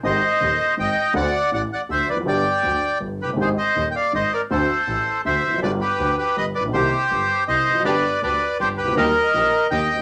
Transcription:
<<
  \new Staff \with { instrumentName = "Bandoneon" } { \time 3/4 \key g \phrygian \tempo 4 = 162 << { ees''2 g''4 | fis''4 fis''8 fis''8 e''8 d''8 | g''2 r8 b'8 | c''8 ees''8.~ ees''32 g''32 f''8 ees''8 d''8 |
c''2 e''4 | d''8 b'4 b'8 ees''8 d''8 | c''2 ees''4 | d''4 d''4 c''8 b'8 |
ees''2 g''4 | } \\ { c''2 ees''4 | d''4 d''8 d''8 c''8 b'8 | d''2 r8 g'8 | aes'8 c''4 d''8 c''8 bes'8 |
a'2 c''4 | b'8 g'4 g'8 b'8 b'8 | g'2 c''4 | b'4 b'4 g'8 g'8 |
bes'2 ees''4 | } >> }
  \new Staff \with { instrumentName = "String section" } { \time 3/4 \key g \phrygian r2. | r2. | r2. | r2. |
r2. | r2. | r2. | <b d' g'>8 r8 <b d' g'>8 r8 <b d' g'>8 r8 |
<bes ees' g'>8 r8 <bes ees' g'>8 r8 <bes ees' g'>8 r8 | }
  \new Staff \with { instrumentName = "Upright piano" } { \clef bass \time 3/4 \key g \phrygian <aes,, aes, ees aes c' g'>8 r8 <ees,, ees,>8 r8 <aes,, aes,>8 r8 | <d, d a c' fis'>8 r8 <a,, a,>8 r8 <d, d>8 r32 e,32 f,32 fis,32 | <g,, g, d g b g'>8 r8 <d, d>8 r8 <g,, g,>8 r32 f,,32 fis,,32 g,,32 | <aes,, aes, ees aes c' g'>8 r8 <ees,, ees,>8 r8 <aes,, aes,>8 r8 |
<d, d a c' fis'>8 r8 <a,, a,>8 r8 <d, d>8 r32 e,32 f,32 fis,32 | <g,, g, d g b f'>8 r8 <d, d>8 r8 <g,, g,>8 r32 a,,32 bes,,32 b,,32 | <c, c ees bes c' g'>8 r8 <g,, g,>8 r8 <c, c>8 r32 e,32 f,32 fis,32 | <g,, g, d g b g'>8 r8 <d, d>8 r8 <g,, g,>8 r32 c,32 des,32 d,32 |
<ees, ees g bes g'>8 r8 <bes,, bes,>8 r8 <ees, ees>8 r32 d,32 ees,32 r32 | }
  \new Staff \with { instrumentName = "Double bass" } { \clef bass \time 3/4 \key g \phrygian aes,,8 r8 ees,8 r8 aes,,8 r8 | d,8 r8 a,,8 r8 d,8 f,,8 | g,,8 r8 d,8 r8 g,,8 fis,,8 | aes,,8 r8 ees,8 r8 aes,,8 r8 |
d,8 r8 a,,8 r8 d,8 f,,8 | g,,8 r8 d,8 r8 g,,8 bes,,8 | c,8 r8 g,,8 r8 c,8 f,,8 | g,,8 r8 d,8 r8 g,,8 des,8 |
ees,8 r8 bes,,8 r8 ees,8 ees,8 | }
>>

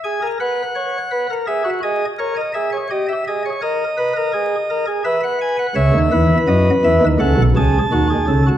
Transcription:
<<
  \new Staff \with { instrumentName = "Pipe organ" } { \time 4/4 \key gis \phrygian \tempo 4 = 84 << { gis''8 fis''4. e''8 dis''8 cis''16 dis''16 e''16 cis''16 | dis''16 e''16 dis''16 cis''16 dis''2 e''16 fis''16 gis''16 fis''16 | e''4 dis''8 e''8 fis''8 a''4. | } \\ { gis'16 ais'16 b'8 cis''8 b'16 ais'16 gis'16 fis'16 gis'8 ais'8 gis'8 | g'8 gis'8 ais'8 b'16 ais'16 gis'8 ais'16 gis'16 b'4 | cis''8 b'4. a'8 gis'8 fis'16 gis'16 a'16 fis'16 | } >> }
  \new Staff \with { instrumentName = "Pipe organ" } { \clef bass \time 4/4 \key gis \phrygian r1 | r1 | <cis, cis>16 <dis, dis>16 <e, e>8 <fis, fis>8 <e, e>16 <dis, dis>16 <cis, cis>16 <b,, b,>16 <cis, cis>8 <dis, dis>8 <cis, cis>8 | }
>>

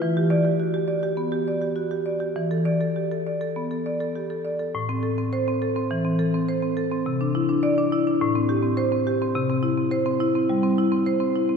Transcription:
\new Staff \with { instrumentName = "Marimba" } { \time 4/4 \key a \minor \tempo 4 = 104 << { r8 d''8 r2. | r8 d''8 r2. | r4 c''8 r2 r8 | r4 d''8 r4. c''8 r8 |
r4 c''8 r2 r8 | } \\ { e16 g'8 g'16 fis'16 g'16 d''16 g'16 b16 g'16 d''16 g'16 fis'16 g'16 d''16 g'16 | e16 a'8 a'16 g'16 a'16 d''16 a'16 b16 a'16 d''16 a'16 g'16 a'16 d''16 a'16 | a,16 c'16 a'16 c'8 c'16 a'16 c'16 e16 c'16 a'16 c'16 c''16 c'16 a'16 c'16 | c16 d'16 e'16 d'8 d'16 e'16 d'16 a,16 c'16 g'16 c'8 c'16 g'16 c'16 |
c16 c'16 e'16 c'8 c'16 e'16 c'16 g16 c'16 e'16 c'16 c''16 c'16 e'16 c'16 | } >> }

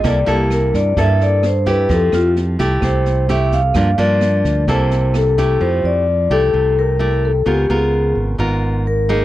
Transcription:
<<
  \new Staff \with { instrumentName = "Vibraphone" } { \time 4/4 \key f \major \tempo 4 = 130 d''8 g'8 bes'8 d''8 e''8 d''8 c''8 b'8 | a'8 f'8 r4 c''4 e''8 f''8~ | f''8 d''4. c''4 a'4 | c''8 d''4 a'4 bes'4 a'8 |
g'8 aes'4 r4. bes'4 | }
  \new Staff \with { instrumentName = "Nylon-string guitar" } { \time 4/4 \key f \major << { <bes e' a'>8 <bes e' a'>4. <bes e' a'>4 r8 <a e' g'>8~ | <a e' g'>4. <a e' g'>4. <a e' g'>8 r8 | <f bes d'>8 <f bes d'>4. <bes e' a'>4. <a e' g'>8~ | <a e' g'>4 r8 <a e' g'>4. <a e' g'>8 r8 |
<ces' f' bes'>8 <ces' f' bes'>4. <ces' f' bes'>4 r8 <bes ees' aes'>8 | } \\ { c2 g,2 | f2 c2 | g,2 c2 | f2 c2 |
des2 aes,2 | } >> }
  \new Staff \with { instrumentName = "Fingered electric bass" } { \clef bass \time 4/4 \key f \major c,8 c,4 g,8 g,2 | f,8 f,4 c,8 c,2 | g,8 g,4 d,8 c,2 | f,8 f,4 c,8 c,2 |
des,8 des,4 aes,,8 aes,,2 | }
  \new DrumStaff \with { instrumentName = "Drums" } \drummode { \time 4/4 <bd ss sn>8 sn8 <ss sn>8 <bd sn>8 <bd sn>8 sn8 <ss sn>8 <bd sn>8 | <bd sn>8 <ss sn>8 sn8 <bd sn>8 <bd ss sn>8 sn8 sn8 <bd sn>8 | <bd ss sn>8 sn8 <ss sn>8 <bd sn>8 <bd sn>8 sn8 <ss sn>8 <bd sn>8 | r4 r4 r4 r4 |
r4 r4 r4 r4 | }
>>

